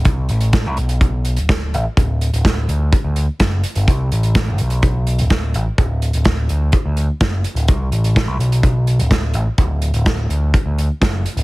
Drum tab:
HH |x-xxx-xxx-xxx-x-|x-xxx-x-x-x-x-xx|x-xxx-xxx-xxx-x-|x-xxx-x-x-x-x-xx|
SD |----o-------o---|----o-------o---|----o-------o---|----o-------o---|
BD |o---o---o---o---|o---o---o---o---|o---o---o---o---|o---o---o---o---|

HH |x-xxx-xxx-xxx-x-|x-xxx-x-x-x-x-xx|
SD |----o-------o---|----o-------o---|
BD |o---o---o---o---|o---o---o---o---|